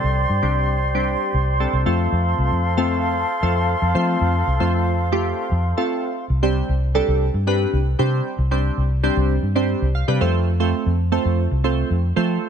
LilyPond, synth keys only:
\new Staff \with { instrumentName = "Synth keys" } { \time 4/4 \key f \lydian \tempo 4 = 115 << { r1 | r1 | r1 | r1 |
r2. f''4 | r1 | } \\ { <g c' d' a'>16 r8 <g c' d' g'>8 r8 <g c' d' g'>8. r8 <g c' d' a'>8 <a c' f' a'>8~ | <a c' f' a'>4 r16 <a c' f' a'>8. r8 <a c' f' a'>8 r8 <a c' f' c''>8~ | <a c' f' c''>16 r8 <a c' f' c''>8 r8 <a c' f' g'>8. r8 <a c' f' a'>8 r8 | r16 <g c' d' g' c''>8 r8 <g c' d' g' a'>8 r8 <g c' d' g' b'>8 r8 <g c' d' g' c''>8 r16 |
r16 <g c' d' g' c''>8 r8 <g c' d' g' c''>8 r8 <g c' d' g' c''>8 r8 <g c' d' g' b'>16 <a c' f' a' c''>8 | r16 <a c' f' a' c''>8 r8 <a c' f' a' c''>8 r8 <a c' f' a' c''>8 r8 <a c' f' a' c''>8 r16 | } >> }